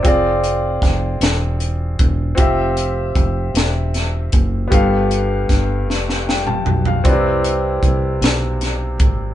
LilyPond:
<<
  \new Staff \with { instrumentName = "Grand piano" } { \time 6/8 \key c \major \tempo 4. = 51 << { r2. | r2. | r2 g''16 a''8 f''16~ | f''16 r2 r8. | } \\ { <c' f' aes' d''>2. | <c' f' g' e''>2. | <b g' a' f''>2. | <c' d' e' b' d''>2. | } >> }
  \new Staff \with { instrumentName = "Grand piano" } { \clef bass \time 6/8 \key c \major r2. | r2. | g,4. r4. | c4. r4. | }
  \new Staff \with { instrumentName = "Fingered electric bass" } { \clef bass \time 6/8 \key c \major f,,4 f,,8 e,,4 e,,8 | f,,4 f,,8 e,,4 fis,,8 | g,,4 g,,8 f,,4 b,,8 | c,4 c,8 b,,4 aes,,8 | }
  \new DrumStaff \with { instrumentName = "Drums" } \drummode { \time 6/8 <hh bd>8 hh8 <hh bd sn>8 <hh sn>8 hh8 <hh bd>8 | <hh bd>8 hh8 <hh bd>8 <hh sn>8 <hh sn>8 <hh bd>8 | <hh bd>8 hh8 <hh bd sn>8 sn16 sn16 sn16 toml16 tomfh16 tomfh16 | <hh bd>8 hh8 <hh bd>8 <hh sn>8 <hh sn>8 <hh bd>8 | }
>>